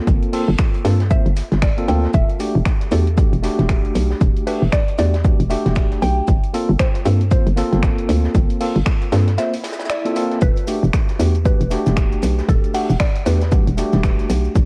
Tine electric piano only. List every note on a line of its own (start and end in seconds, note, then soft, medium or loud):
0.00 0.30 A#3 loud
0.00 0.30 C4 medium
0.00 0.31 F4 medium
0.00 0.31 A4 loud
0.33 0.48 A#3 loud
0.33 0.49 C4 medium
0.33 0.49 F4 medium
0.33 0.49 A4 loud
0.84 1.00 A#3 medium
0.84 1.00 C4 medium
0.84 1.00 F4 medium
0.84 1.01 A4 medium
1.10 1.26 A#3 medium
1.10 1.26 C4 medium
1.10 1.26 F4 medium
1.10 1.26 C5 medium
1.77 1.87 A#3 loud
1.77 1.87 C4 medium
1.77 1.87 F4 medium
1.77 1.87 A4 loud
1.88 2.10 A#3 medium
1.88 2.10 C4 medium
1.88 2.10 F4 medium
1.88 2.10 A4 medium
2.40 2.55 A3 loud
2.40 2.55 D4 medium
2.40 2.56 F#4 medium
2.40 2.56 G4 loud
2.91 3.07 A3 medium
2.91 3.07 D4 medium
2.91 3.07 F#4 medium
2.91 3.07 G4 medium
3.17 3.33 A3 medium
3.17 3.33 D4 medium
3.17 3.33 F#4 medium
3.17 3.33 G4 medium
3.43 4.44 A3 loud
3.43 4.44 D4 medium
3.43 4.45 F#4 medium
3.43 4.45 G4 loud
4.47 4.62 A3 loud
4.47 4.62 D4 medium
4.47 4.62 F#4 medium
4.47 4.63 G4 loud
4.98 5.14 A3 medium
4.98 5.14 D4 medium
4.98 5.14 F#4 medium
4.98 5.14 G4 medium
5.24 5.40 A3 medium
5.24 5.40 D4 medium
5.24 5.40 F#4 medium
5.24 5.40 G4 medium
5.50 6.26 A3 loud
5.50 6.27 D4 medium
5.50 6.27 F#4 medium
5.50 6.27 G4 loud
6.53 6.69 A#3 loud
6.53 6.69 C4 medium
6.53 6.69 F4 medium
6.53 6.69 A4 loud
7.05 7.21 A#3 medium
7.05 7.21 C4 medium
7.05 7.21 F4 medium
7.05 7.21 A4 medium
7.31 7.47 A#3 medium
7.31 7.47 C4 medium
7.31 7.47 F4 medium
7.31 7.47 C5 medium
7.56 8.58 A#3 loud
7.56 8.58 C4 medium
7.56 8.58 F4 loud
7.56 8.59 A4 loud
8.60 8.76 A#3 loud
8.60 8.76 C4 medium
8.60 8.76 F4 medium
8.60 8.76 A4 loud
9.12 9.28 A#3 medium
9.12 9.28 C4 medium
9.12 9.28 F4 medium
9.12 9.28 A4 medium
9.38 9.54 A#3 medium
9.38 9.54 C4 medium
9.38 9.54 F4 medium
9.38 9.54 C5 medium
10.05 10.14 A#3 medium
10.05 10.14 C4 medium
10.05 10.14 F4 medium
10.05 10.15 A4 loud
10.15 10.38 A#3 medium
10.15 10.38 C4 medium
10.15 10.38 F4 medium
10.15 10.38 A4 medium
10.67 10.83 A3 loud
10.67 10.83 D4 medium
10.67 10.83 F#4 medium
10.67 10.83 G4 loud
11.19 11.35 A3 medium
11.19 11.35 D4 medium
11.19 11.35 F#4 medium
11.19 11.35 G4 medium
11.45 11.60 A3 medium
11.45 11.61 D4 medium
11.45 11.61 F#4 medium
11.45 11.61 G4 medium
11.70 12.72 A3 loud
11.70 12.72 D4 medium
11.70 12.72 F#4 medium
11.70 12.72 G4 loud
12.74 12.90 A3 medium
12.74 12.90 D4 medium
12.74 12.90 F#4 medium
12.74 12.90 G4 loud
13.26 13.42 A3 medium
13.26 13.42 D4 medium
13.26 13.42 F#4 medium
13.26 13.42 G4 medium
13.52 13.67 A3 medium
13.52 13.67 D4 medium
13.52 13.68 F#4 medium
13.52 13.68 G4 medium
13.77 14.54 A3 loud
13.77 14.54 D4 medium
13.77 14.55 F#4 medium
13.77 14.55 G4 loud